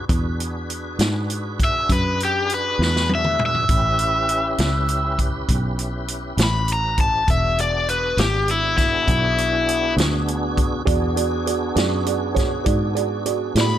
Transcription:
0.08 fingered electric bass E2, tonewheel organ D4 F#4 G#4 B4, kick, closed hi-hat
0.40 closed hi-hat
0.70 closed hi-hat
0.99 fingered electric bass G#2, snare, closed hi-hat
1.30 closed hi-hat
1.60 kick, closed hi-hat
1.64 overdriven electric guitar E5
1.89 fingered electric bass F#2, overdriven electric guitar B4, kick, closed hi-hat
2.20 closed hi-hat
2.25 overdriven electric guitar G4
2.50 closed hi-hat
2.54 overdriven electric guitar B4
2.79 fingered electric bass E2, snare
2.84 overdriven electric guitar B4
2.96 snare
3.09 high tom
3.15 overdriven electric guitar E5
3.24 mid tom
3.39 mid tom
3.46 overdriven electric guitar E5
3.55 floor tom
3.69 fingered electric bass A1, tonewheel organ C#4 E4 G4 B4, kick, closed hi-hat
3.99 closed hi-hat
4.29 closed hi-hat
4.58 fingered electric bass C#2, snare, closed hi-hat
4.88 closed hi-hat
5.19 kick, closed hi-hat
5.49 fingered electric bass B1, kick, closed hi-hat
5.79 closed hi-hat
6.08 closed hi-hat
6.37 fingered electric bass A1, snare, closed hi-hat
6.43 overdriven electric guitar B5
6.68 closed hi-hat
6.73 overdriven electric guitar A#5
6.98 overdriven electric guitar A5, kick, closed hi-hat
7.26 fingered electric bass E1, tonewheel organ B3 D4 F#4 G#4, kick, closed hi-hat
7.30 overdriven electric guitar E5
7.58 overdriven electric guitar D5, closed hi-hat
7.89 overdriven electric guitar B4, closed hi-hat
8.17 fingered electric bass G#1, overdriven electric guitar G4, snare, closed hi-hat
8.48 overdriven electric guitar E4, closed hi-hat
8.78 overdriven electric guitar E4, kick, snare, closed hi-hat
9.08 fingered electric bass B1, kick, closed hi-hat
9.38 closed hi-hat
9.69 closed hi-hat
9.97 fingered electric bass D2, snare, closed hi-hat
10.28 closed hi-hat
10.57 kick, closed hi-hat
10.85 fingered electric bass E2, tonewheel organ B3 D4 F#4 G#4, upright piano F#4 G#4 D5, kick, closed hi-hat
11.16 upright piano F#4 G#4 D5, closed hi-hat
11.46 upright piano F#4 G#4 D5, closed hi-hat
11.75 fingered electric bass F#2, upright piano F#4 G#4 D5, snare, closed hi-hat
12.06 upright piano F#4 G#4 D5, closed hi-hat
12.34 upright piano F#4 G#4 C#5, kick, snare, closed hi-hat
12.64 fingered electric bass G#2, upright piano F#4 G#4 D5, kick, closed hi-hat
12.95 upright piano F#4 G#4 D5, closed hi-hat
13.26 upright piano F#4 G#4 D5, closed hi-hat
13.55 fingered electric bass A2, upright piano F#4 G#4 D5, snare, closed hi-hat
13.61 overdriven electric guitar B5

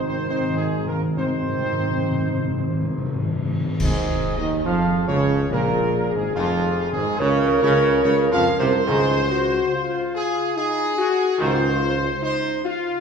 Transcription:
Already playing: tuba G#1, trombone section D#3 D#4
0.02 timpani G#2
0.08 timpani G#2, french horn section C4, trumpet section C5
0.17 timpani G#2
0.25 timpani G#2, trombone section D#3 D#4, trumpet section C5
0.30 timpani G#2, french horn section C4
0.40 timpani G#2
0.48 timpani G#2
0.56 timpani G#2, trumpet section G#4
0.60 timpani G#2, french horn section G#3
0.71 timpani G#2
0.79 timpani G#2
0.86 timpani G#2, french horn section A#3, trumpet section A#4
0.93 timpani G#2
1.02 timpani G#2
1.09 timpani G#2
1.17 timpani G#2, trombone section D#3 D#4, french horn section C4, trumpet section C5
1.25 timpani G#2
1.34 timpani G#2
1.43 timpani G#2
1.49 timpani G#2
1.57 timpani G#2
1.65 timpani G#2
1.72 timpani G#2
1.80 timpani G#2
1.89 timpani G#2
1.96 timpani G#2
2.04 timpani G#2
2.12 timpani G#2
2.19 timpani G#2
2.27 timpani G#2
2.35 timpani G#2
2.43 timpani G#2
2.50 timpani G#2
2.58 timpani G#2
2.65 timpani G#2
2.73 timpani G#2
2.81 timpani G#2
2.89 timpani G#2
2.98 timpani G#2
3.06 timpani G#2
3.13 timpani G#2
3.20 timpani G#2
3.28 timpani G#2
3.36 timpani G#2
3.45 timpani G#2
3.52 timpani G#2
3.60 timpani G#2
3.68 timpani G#2
3.80 tuba G#1, trombone section G#2, trumpet section G#4, concert bass drum, crash
4.37 tuba D#2, trombone section D#3, trumpet section D#5
4.65 tuba F2, trombone section F3, french horn section G#4, trumpet section F5
5.07 tuba C#2, trombone section C#3, trumpet section C#5
5.50 tuba A#1, trombone section A#2, trumpet section A#4
6.13 tuba G#1, trombone section G#2, trumpet section G#4
6.35 tuba F1, trombone section F2, trumpet section F4
6.92 tuba G#1, trombone section G#2, trumpet section G#4
7.19 tuba C#2, trombone section C#3, french horn section A#4, trumpet section C#5
7.62 tuba C#2, trombone section C#3, trumpet section C#5
8.04 tuba C#2, trombone section C#3, trumpet section C#5
8.32 tuba F2, trombone section F3, trumpet section F5
8.59 tuba C2, trombone section C3, trumpet section C5
8.87 tuba C#2, trombone section G#2 D#3, french horn section G#4
9.31 french horn section F#4
9.73 french horn section F4
10.15 trumpet section G#4
10.57 french horn section D#4, trumpet section G#4
10.98 french horn section F#4
11.39 tuba C#2, trombone section G#2 D#3, french horn section F4, trumpet section C5
12.22 french horn section D#4, trumpet section C5
12.65 french horn section F4

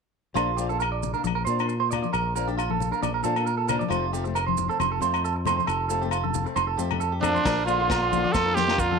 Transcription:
0.34 fingered electric bass A#1, nylon-string guitar F3 A#3 D4, clean electric guitar F4, low agogo, maracas
0.57 nylon-string guitar F3 A#3 D4, clean electric guitar G4, maracas
0.69 nylon-string guitar A#3 D4, clean electric guitar A4, maracas
0.80 clean electric guitar A#4, low agogo, maracas
0.92 clean electric guitar D5
1.03 low conga, maracas
1.14 nylon-string guitar A#3 D4, clean electric guitar A#4, maracas
1.24 fingered electric bass A#1, muted clean electric guitar stroke, high conga, low agogo, maracas
1.35 clean electric guitar A#4
1.45 fingered electric bass A#2, nylon-string guitar F3 A#3 D4, clean electric guitar C5, maracas
1.59 nylon-string guitar A#3 D4, low agogo, maracas
1.69 muted clean electric guitar stroke, maracas
1.80 clean electric guitar C5
1.91 nylon-string guitar A#3 D4, clean electric guitar D5, low conga, low agogo, maracas
2.02 clean electric guitar D5, high conga, maracas
2.13 fingered electric bass A#1, clean electric guitar A#4, low agogo, maracas
2.35 nylon-string guitar F3 A#3 D4, clean electric guitar A#4, maracas
2.47 nylon-string guitar D4, clean electric guitar G4, maracas
2.58 clean electric guitar F4, low agogo, maracas
2.70 clean electric guitar A4, high conga
2.80 low conga, maracas
2.91 nylon-string guitar A#3 D4, clean electric guitar A#4, maracas
3.02 fingered electric bass A#1, clean electric guitar D5, high conga, low agogo, maracas
3.14 clean electric guitar A#4
3.22 fingered electric bass A#2, nylon-string guitar F3 A#3 D4, clean electric guitar A4, maracas
3.36 nylon-string guitar A#3, low agogo, maracas
3.46 clean electric guitar A#4, maracas
3.57 clean electric guitar A4
3.67 nylon-string guitar F3 A#3 D4, clean electric guitar A#4, low conga, low agogo, maracas
3.79 clean electric guitar D5, high conga, maracas
3.88 fingered electric bass F1, nylon-string guitar F3 A3 C4, clean electric guitar F4, low agogo, maracas
4.12 nylon-string guitar F3 A3 C4, clean electric guitar G4, maracas
4.24 nylon-string guitar A3 C4, muted clean electric guitar stroke, maracas
4.35 clean electric guitar A#4, low agogo, maracas
4.47 clean electric guitar C5, high conga
4.57 low conga, maracas
4.68 nylon-string guitar A3 C4, clean electric guitar A4, maracas
4.80 fingered electric bass F1, clean electric guitar C5, high conga, low agogo, maracas
4.92 clean electric guitar A4
5.00 fingered electric bass F2, nylon-string guitar F3 A3 C4, clean electric guitar C5, maracas
5.12 nylon-string guitar A3, muted nylon-string guitar stroke, low agogo, maracas
5.25 clean electric guitar A4, maracas
5.36 muted clean electric guitar stroke
5.45 nylon-string guitar A3 C4, clean electric guitar C5, low conga, low agogo, maracas
5.57 clean electric guitar C5, high conga, maracas
5.67 fingered electric bass F1, clean electric guitar A4, low agogo, maracas
5.89 nylon-string guitar F3 A3 C4, clean electric guitar A4, maracas
6.02 nylon-string guitar A3 C4, clean electric guitar G4, maracas
6.11 clean electric guitar F4, low agogo, maracas
6.24 clean electric guitar A4, high conga
6.34 low conga, maracas
6.44 nylon-string guitar A3 C4, muted clean electric guitar stroke, maracas
6.56 fingered electric bass F1, clean electric guitar C5, high conga, low agogo, maracas
6.67 clean electric guitar A4
6.77 fingered electric bass F2, nylon-string guitar F3 A3 C4, clean electric guitar G4, maracas
6.91 nylon-string guitar A3, low conga, low agogo
7.00 clean electric guitar A4, maracas
7.12 clean electric guitar G4
7.20 nylon-string guitar F3 A3 C4, trumpet D4, clean electric guitar A4, high conga, low conga, low agogo
7.24 tenor saxophone A#2, maracas
7.35 clean electric guitar C5, high conga, maracas
7.43 fingered electric bass A#1, nylon-string guitar F3 A#3 D4, clean electric guitar A#4, muted nylon-string guitar stroke, kick, snare, crash, low agogo, maracas
7.65 tenor saxophone D3, nylon-string guitar F3 A#3 D4 F4, trumpet F4, clean electric guitar C5, maracas
7.79 nylon-string guitar A#3 D4 F4, clean electric guitar C5
7.89 clean electric guitar A#4, kick, snare, low agogo, maracas
8.02 clean electric guitar C5
8.11 nylon-string guitar F3 A#3 D4 F4, high conga, low conga, maracas
8.24 clean electric guitar D5, high conga
8.32 fingered electric bass F2, trumpet A4, clean electric guitar C5, kick, snare, low agogo, maracas
8.36 tenor saxophone F3
8.45 nylon-string guitar A#3 D4 F4, clean electric guitar A#4
8.55 tenor saxophone D#3, trumpet G4, clean electric guitar C5, snare, high conga, maracas
8.67 nylon-string guitar A#3 D4 F4, snare, low agogo
8.78 tenor saxophone D3, trumpet F4, clean electric guitar A#4, kick, maracas
8.91 clean electric guitar A4, high conga

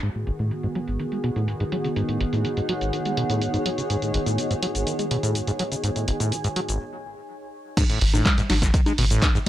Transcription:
0.03 acid bass G#2, analog synth pad D#3 B3 F#4 G#4, ambient pad D#4, closed hi-hat
0.15 acid bass A2, closed hi-hat, cabasa
0.27 acid bass G#1, ambient pad G#4, closed hi-hat
0.39 acid bass A2, closed hi-hat, cabasa
0.51 acid bass G#3, closed hi-hat, cabasa
0.63 acid bass G#2, closed hi-hat, cabasa
0.75 acid bass F#3, closed hi-hat
0.80 ambient pad F#5
0.88 acid bass G#1, closed hi-hat, cabasa
1.00 acid bass D#3, closed hi-hat, cabasa
1.10 acid bass G#3, ambient pad C#5, closed hi-hat, cabasa
1.24 acid bass B2, closed hi-hat
1.36 acid bass A2, closed hi-hat, cabasa
1.48 acid bass G#2, closed hi-hat, cabasa
1.60 acid bass G#2, closed hi-hat, cabasa
1.72 acid bass F#3, closed hi-hat
1.84 acid bass C#3, closed hi-hat, cabasa
1.96 acid bass G#2, closed hi-hat, cabasa
2.09 acid bass A2, closed hi-hat, cabasa
2.21 acid bass G#1, closed hi-hat
2.33 acid bass A2, closed hi-hat, cabasa
2.45 acid bass G#3, closed hi-hat, cabasa
2.57 acid bass G#2, closed hi-hat, cabasa
2.69 acid bass F#3, closed hi-hat
2.81 acid bass G#1, closed hi-hat, cabasa
2.93 acid bass D#3, closed hi-hat, cabasa
3.05 acid bass G#3, closed hi-hat, cabasa
3.17 acid bass B2, closed hi-hat
3.30 acid bass A2, closed hi-hat, cabasa
3.42 acid bass G#2, closed hi-hat, cabasa
3.54 acid bass G#2, closed hi-hat, cabasa
3.66 acid bass F#3, closed hi-hat
3.78 acid bass C#3, closed hi-hat, cabasa
3.90 acid bass G#2, closed hi-hat, cabasa
4.02 acid bass A2, closed hi-hat, cabasa
4.14 acid bass G#1, closed hi-hat
4.26 acid bass A2, ambient pad G#5, closed hi-hat, cabasa
4.38 acid bass G#3, closed hi-hat, cabasa
4.51 acid bass G#2, closed hi-hat, cabasa
4.62 acid bass F#3, closed hi-hat
4.75 acid bass G#1, closed hi-hat, cabasa
4.87 acid bass D#3, closed hi-hat, cabasa
4.99 acid bass G#3, closed hi-hat, cabasa
5.11 acid bass B2, closed hi-hat
5.23 acid bass A2, closed hi-hat, cabasa
5.35 acid bass G#2, closed hi-hat, cabasa
5.47 acid bass G#2, closed hi-hat, cabasa
5.59 acid bass F#3, closed hi-hat
5.72 acid bass C#3, closed hi-hat, cabasa
5.84 acid bass G#2, closed hi-hat, cabasa
5.96 acid bass A2, closed hi-hat, cabasa
6.08 acid bass G#1, closed hi-hat
6.20 acid bass A2, closed hi-hat, cabasa
6.32 acid bass G#3, closed hi-hat, cabasa
6.44 acid bass G#2, closed hi-hat, cabasa
6.56 acid bass F#3, closed hi-hat
6.69 acid bass G#1, closed hi-hat, cabasa
7.77 acid bass G#2, kick, closed hi-hat, crash, high conga, cabasa
7.89 acid bass A2, closed hi-hat, cabasa
8.01 sub bass G#1, acid bass G#1, closed hi-hat, open hi-hat, ride
8.14 acid bass A2, snare, high conga, cabasa
8.26 acid bass G#3, kick, snare, clap, closed hi-hat, low conga, cabasa
8.38 acid bass G#2, snare, closed hi-hat, cabasa
8.50 sub bass G#1, acid bass F#3, snare, closed hi-hat, open hi-hat, ride, high conga
8.62 acid bass G#1, kick, snare, closed hi-hat, cabasa
8.74 acid bass D#3, kick, closed hi-hat, cabasa
8.86 acid bass G#3, closed hi-hat, high conga, cabasa
8.98 sub bass G#1, acid bass B2, closed hi-hat, open hi-hat, ride
9.10 acid bass A2, closed hi-hat, cabasa
9.22 acid bass G#2, kick, snare, clap, closed hi-hat, high conga, cabasa
9.35 acid bass G#2, cabasa

